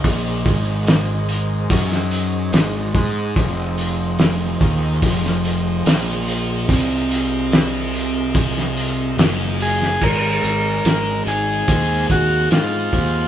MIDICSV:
0, 0, Header, 1, 6, 480
1, 0, Start_track
1, 0, Tempo, 831025
1, 25, Time_signature, 4, 2, 24, 8
1, 7670, End_track
2, 0, Start_track
2, 0, Title_t, "Transistor combo organ"
2, 0, Program_c, 0, 18
2, 5558, Note_on_c, 0, 68, 81
2, 5796, Note_on_c, 0, 70, 93
2, 5798, Note_off_c, 0, 68, 0
2, 6489, Note_off_c, 0, 70, 0
2, 6516, Note_on_c, 0, 68, 69
2, 6970, Note_off_c, 0, 68, 0
2, 6996, Note_on_c, 0, 66, 85
2, 7216, Note_off_c, 0, 66, 0
2, 7234, Note_on_c, 0, 65, 74
2, 7670, Note_off_c, 0, 65, 0
2, 7670, End_track
3, 0, Start_track
3, 0, Title_t, "Tonewheel organ"
3, 0, Program_c, 1, 16
3, 0, Note_on_c, 1, 63, 59
3, 0, Note_on_c, 1, 68, 55
3, 0, Note_on_c, 1, 72, 53
3, 0, Note_on_c, 1, 75, 57
3, 1915, Note_off_c, 1, 63, 0
3, 1942, Note_on_c, 1, 65, 57
3, 3834, Note_off_c, 1, 72, 0
3, 3857, Note_on_c, 1, 70, 62
3, 5757, Note_off_c, 1, 75, 0
3, 5758, Note_off_c, 1, 68, 0
3, 5760, Note_off_c, 1, 65, 0
3, 5762, Note_off_c, 1, 70, 0
3, 5789, Note_on_c, 1, 63, 53
3, 5791, Note_on_c, 1, 60, 48
3, 5793, Note_on_c, 1, 68, 70
3, 5794, Note_on_c, 1, 56, 48
3, 7670, Note_off_c, 1, 56, 0
3, 7670, Note_off_c, 1, 60, 0
3, 7670, Note_off_c, 1, 63, 0
3, 7670, Note_off_c, 1, 68, 0
3, 7670, End_track
4, 0, Start_track
4, 0, Title_t, "Distorted electric guitar"
4, 0, Program_c, 2, 30
4, 22, Note_on_c, 2, 46, 118
4, 26, Note_on_c, 2, 58, 114
4, 256, Note_off_c, 2, 46, 0
4, 258, Note_off_c, 2, 58, 0
4, 263, Note_on_c, 2, 44, 96
4, 268, Note_on_c, 2, 56, 106
4, 976, Note_off_c, 2, 44, 0
4, 979, Note_off_c, 2, 56, 0
4, 984, Note_on_c, 2, 54, 93
4, 986, Note_on_c, 2, 66, 102
4, 1456, Note_off_c, 2, 54, 0
4, 1458, Note_off_c, 2, 66, 0
4, 1462, Note_on_c, 2, 44, 92
4, 1467, Note_on_c, 2, 56, 105
4, 1695, Note_off_c, 2, 56, 0
4, 1696, Note_off_c, 2, 44, 0
4, 1702, Note_on_c, 2, 56, 91
4, 1707, Note_on_c, 2, 68, 102
4, 1936, Note_off_c, 2, 56, 0
4, 1938, Note_off_c, 2, 68, 0
4, 1940, Note_on_c, 2, 41, 110
4, 1945, Note_on_c, 2, 53, 122
4, 2654, Note_off_c, 2, 41, 0
4, 2656, Note_off_c, 2, 53, 0
4, 2657, Note_on_c, 2, 51, 84
4, 2663, Note_on_c, 2, 63, 96
4, 2892, Note_off_c, 2, 51, 0
4, 2896, Note_off_c, 2, 63, 0
4, 2900, Note_on_c, 2, 41, 81
4, 2902, Note_on_c, 2, 53, 97
4, 3374, Note_off_c, 2, 41, 0
4, 3375, Note_off_c, 2, 53, 0
4, 3382, Note_on_c, 2, 46, 92
4, 3385, Note_on_c, 2, 58, 110
4, 3855, Note_off_c, 2, 46, 0
4, 3856, Note_off_c, 2, 58, 0
4, 3857, Note_on_c, 2, 48, 108
4, 3861, Note_on_c, 2, 60, 117
4, 5293, Note_off_c, 2, 48, 0
4, 5296, Note_off_c, 2, 60, 0
4, 5302, Note_on_c, 2, 42, 105
4, 5305, Note_on_c, 2, 54, 101
4, 5776, Note_off_c, 2, 42, 0
4, 5778, Note_off_c, 2, 54, 0
4, 5787, Note_on_c, 2, 56, 78
4, 6264, Note_off_c, 2, 56, 0
4, 6267, Note_on_c, 2, 56, 65
4, 6505, Note_on_c, 2, 63, 59
4, 6747, Note_on_c, 2, 72, 72
4, 6990, Note_on_c, 2, 68, 56
4, 7221, Note_off_c, 2, 63, 0
4, 7224, Note_on_c, 2, 63, 75
4, 7465, Note_off_c, 2, 72, 0
4, 7468, Note_on_c, 2, 72, 70
4, 7670, Note_off_c, 2, 56, 0
4, 7670, Note_off_c, 2, 63, 0
4, 7670, Note_off_c, 2, 68, 0
4, 7670, Note_off_c, 2, 72, 0
4, 7670, End_track
5, 0, Start_track
5, 0, Title_t, "Picked electric bass"
5, 0, Program_c, 3, 34
5, 21, Note_on_c, 3, 34, 95
5, 246, Note_off_c, 3, 34, 0
5, 261, Note_on_c, 3, 32, 97
5, 959, Note_off_c, 3, 32, 0
5, 984, Note_on_c, 3, 42, 105
5, 1440, Note_off_c, 3, 42, 0
5, 1461, Note_on_c, 3, 32, 91
5, 1685, Note_off_c, 3, 32, 0
5, 1699, Note_on_c, 3, 44, 90
5, 1924, Note_off_c, 3, 44, 0
5, 1940, Note_on_c, 3, 29, 90
5, 2638, Note_off_c, 3, 29, 0
5, 2661, Note_on_c, 3, 39, 106
5, 2885, Note_off_c, 3, 39, 0
5, 2900, Note_on_c, 3, 29, 100
5, 3358, Note_off_c, 3, 29, 0
5, 3386, Note_on_c, 3, 34, 83
5, 3841, Note_off_c, 3, 34, 0
5, 3862, Note_on_c, 3, 36, 91
5, 5280, Note_off_c, 3, 36, 0
5, 5299, Note_on_c, 3, 30, 90
5, 5759, Note_off_c, 3, 30, 0
5, 5784, Note_on_c, 3, 32, 83
5, 5996, Note_off_c, 3, 32, 0
5, 6027, Note_on_c, 3, 32, 77
5, 6237, Note_off_c, 3, 32, 0
5, 6267, Note_on_c, 3, 32, 83
5, 6478, Note_off_c, 3, 32, 0
5, 6501, Note_on_c, 3, 32, 95
5, 6715, Note_off_c, 3, 32, 0
5, 6746, Note_on_c, 3, 39, 88
5, 6958, Note_off_c, 3, 39, 0
5, 6986, Note_on_c, 3, 39, 78
5, 7198, Note_off_c, 3, 39, 0
5, 7228, Note_on_c, 3, 44, 76
5, 7440, Note_off_c, 3, 44, 0
5, 7465, Note_on_c, 3, 39, 81
5, 7670, Note_off_c, 3, 39, 0
5, 7670, End_track
6, 0, Start_track
6, 0, Title_t, "Drums"
6, 25, Note_on_c, 9, 36, 96
6, 25, Note_on_c, 9, 46, 82
6, 82, Note_off_c, 9, 36, 0
6, 83, Note_off_c, 9, 46, 0
6, 264, Note_on_c, 9, 36, 102
6, 266, Note_on_c, 9, 46, 64
6, 322, Note_off_c, 9, 36, 0
6, 324, Note_off_c, 9, 46, 0
6, 505, Note_on_c, 9, 46, 82
6, 511, Note_on_c, 9, 38, 108
6, 563, Note_off_c, 9, 46, 0
6, 568, Note_off_c, 9, 38, 0
6, 743, Note_on_c, 9, 46, 57
6, 801, Note_off_c, 9, 46, 0
6, 982, Note_on_c, 9, 36, 114
6, 984, Note_on_c, 9, 46, 93
6, 1040, Note_off_c, 9, 36, 0
6, 1041, Note_off_c, 9, 46, 0
6, 1109, Note_on_c, 9, 38, 37
6, 1166, Note_off_c, 9, 38, 0
6, 1220, Note_on_c, 9, 46, 58
6, 1278, Note_off_c, 9, 46, 0
6, 1462, Note_on_c, 9, 46, 71
6, 1468, Note_on_c, 9, 38, 103
6, 1520, Note_off_c, 9, 46, 0
6, 1525, Note_off_c, 9, 38, 0
6, 1702, Note_on_c, 9, 36, 106
6, 1705, Note_on_c, 9, 46, 56
6, 1760, Note_off_c, 9, 36, 0
6, 1762, Note_off_c, 9, 46, 0
6, 1942, Note_on_c, 9, 36, 106
6, 1944, Note_on_c, 9, 46, 68
6, 2000, Note_off_c, 9, 36, 0
6, 2001, Note_off_c, 9, 46, 0
6, 2182, Note_on_c, 9, 46, 51
6, 2240, Note_off_c, 9, 46, 0
6, 2418, Note_on_c, 9, 46, 68
6, 2424, Note_on_c, 9, 38, 107
6, 2476, Note_off_c, 9, 46, 0
6, 2481, Note_off_c, 9, 38, 0
6, 2663, Note_on_c, 9, 36, 106
6, 2667, Note_on_c, 9, 46, 53
6, 2720, Note_off_c, 9, 36, 0
6, 2724, Note_off_c, 9, 46, 0
6, 2902, Note_on_c, 9, 36, 103
6, 2903, Note_on_c, 9, 46, 81
6, 2960, Note_off_c, 9, 36, 0
6, 2960, Note_off_c, 9, 46, 0
6, 3030, Note_on_c, 9, 38, 33
6, 3088, Note_off_c, 9, 38, 0
6, 3146, Note_on_c, 9, 46, 56
6, 3204, Note_off_c, 9, 46, 0
6, 3386, Note_on_c, 9, 46, 71
6, 3392, Note_on_c, 9, 38, 108
6, 3444, Note_off_c, 9, 46, 0
6, 3450, Note_off_c, 9, 38, 0
6, 3627, Note_on_c, 9, 46, 55
6, 3684, Note_off_c, 9, 46, 0
6, 3864, Note_on_c, 9, 36, 105
6, 3869, Note_on_c, 9, 46, 80
6, 3922, Note_off_c, 9, 36, 0
6, 3927, Note_off_c, 9, 46, 0
6, 4107, Note_on_c, 9, 46, 61
6, 4165, Note_off_c, 9, 46, 0
6, 4346, Note_on_c, 9, 46, 72
6, 4351, Note_on_c, 9, 38, 97
6, 4403, Note_off_c, 9, 46, 0
6, 4409, Note_off_c, 9, 38, 0
6, 4584, Note_on_c, 9, 46, 61
6, 4641, Note_off_c, 9, 46, 0
6, 4822, Note_on_c, 9, 36, 112
6, 4823, Note_on_c, 9, 46, 80
6, 4880, Note_off_c, 9, 36, 0
6, 4881, Note_off_c, 9, 46, 0
6, 4952, Note_on_c, 9, 38, 34
6, 5010, Note_off_c, 9, 38, 0
6, 5065, Note_on_c, 9, 46, 61
6, 5123, Note_off_c, 9, 46, 0
6, 5305, Note_on_c, 9, 46, 72
6, 5310, Note_on_c, 9, 38, 103
6, 5362, Note_off_c, 9, 46, 0
6, 5368, Note_off_c, 9, 38, 0
6, 5546, Note_on_c, 9, 46, 59
6, 5604, Note_off_c, 9, 46, 0
6, 5671, Note_on_c, 9, 38, 38
6, 5729, Note_off_c, 9, 38, 0
6, 5785, Note_on_c, 9, 36, 94
6, 5786, Note_on_c, 9, 49, 96
6, 5843, Note_off_c, 9, 36, 0
6, 5843, Note_off_c, 9, 49, 0
6, 6029, Note_on_c, 9, 42, 60
6, 6087, Note_off_c, 9, 42, 0
6, 6268, Note_on_c, 9, 42, 72
6, 6273, Note_on_c, 9, 38, 94
6, 6325, Note_off_c, 9, 42, 0
6, 6331, Note_off_c, 9, 38, 0
6, 6509, Note_on_c, 9, 42, 55
6, 6567, Note_off_c, 9, 42, 0
6, 6746, Note_on_c, 9, 42, 88
6, 6747, Note_on_c, 9, 36, 112
6, 6804, Note_off_c, 9, 42, 0
6, 6805, Note_off_c, 9, 36, 0
6, 6987, Note_on_c, 9, 42, 63
6, 6988, Note_on_c, 9, 36, 79
6, 7045, Note_off_c, 9, 36, 0
6, 7045, Note_off_c, 9, 42, 0
6, 7226, Note_on_c, 9, 42, 73
6, 7231, Note_on_c, 9, 38, 107
6, 7283, Note_off_c, 9, 42, 0
6, 7289, Note_off_c, 9, 38, 0
6, 7467, Note_on_c, 9, 42, 57
6, 7468, Note_on_c, 9, 36, 80
6, 7525, Note_off_c, 9, 42, 0
6, 7526, Note_off_c, 9, 36, 0
6, 7670, End_track
0, 0, End_of_file